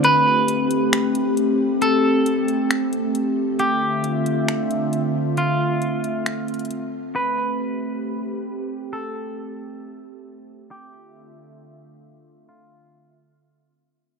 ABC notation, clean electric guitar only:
X:1
M:4/4
L:1/8
Q:1/4=135
K:Am
V:1 name="Clean electric guitar"
B8 | A8 | G8 | F6 z2 |
B8 | A8 | G8 | F6 z2 |]